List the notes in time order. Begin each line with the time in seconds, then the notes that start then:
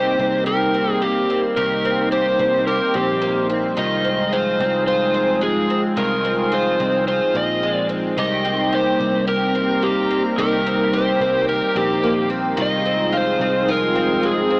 Already playing: C2 D#3 G3 A#3 C4 D#4 G4 A#4 C5
0.19 C2 C4
0.46 G4 A#4
0.74 C4
0.92 G#4
1.02 A#3 G4
1.30 C4
1.56 C2 D#3 G4 A#4 C5
1.85 C4
2.12 G4 C5
2.39 C2 C4
2.67 G4 A#4
2.94 A#1 C4 G4
3.21 A#3
3.50 C4
3.77 C2 D#3 F3 G#3 F4 G#4 D#5
4.04 C4
4.33 F4 C5
4.60 C2 C4
4.87 F4 C5
5.14 C4
5.41 G#3 G#4
5.70 C4
5.97 C2 D#3 F4 A#4
6.25 C4
6.52 F4 C5
6.80 C2 C4
7.08 F4 C5
7.35 A#1 C4 D#5
7.63 G#3
7.74 D5
7.89 C4
8.16 C2 D#3 G3 A#3 D#4 G4 A#4 D#5
8.45 C4
8.64 A#5
8.72 G4 C5
9.00 C2 C4
9.27 G4 A#4
9.55 C4
9.82 A#3 G4
10.11 C4
10.38 C2 D#3 G4 A#4 G5
10.67 C4
10.93 G4 C5
11.21 C2 C4
11.49 G4 A#4
11.76 A#1 C4 G4
12.03 A#3
12.19 C6
12.30 C4
12.57 C2 D#3 F3 G#3 C4 F4 G#4
12.62 D#5
12.86 C4
13.13 F4
13.17 C5
13.40 C2 C4
13.68 F4 A#4
13.95 C4
14.23 G#3 G#4
14.50 C4